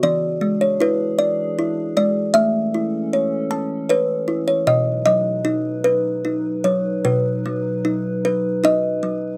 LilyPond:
<<
  \new Staff \with { instrumentName = "Kalimba" } { \time 3/4 \key b \mixolydian \tempo 4 = 77 << { d''8. cis''16 b'4. d''8 | e''2 b'8. cis''16 | dis''8 dis''2 cis''8 | b'4. r8 dis''4 | } \\ { e8 gis8 e'8 d''8 e'8 gis8 | a8 e'8 cis''8 a''8 cis''8 e'8 | b,8 fis8 dis'8 b'8 dis'8 fis8 | b,8 fis8 dis'8 b'8 dis'8 fis8 | } >> }
  \new Staff \with { instrumentName = "Ambient pad" } { \time 3/4 \key b \mixolydian << { <d' gis'>2. | <cis' a'>2. | <dis' b'>2.~ | <dis' b'>2. | } \\ { e2.~ | e2. | fis2.~ | fis2. | } >> }
>>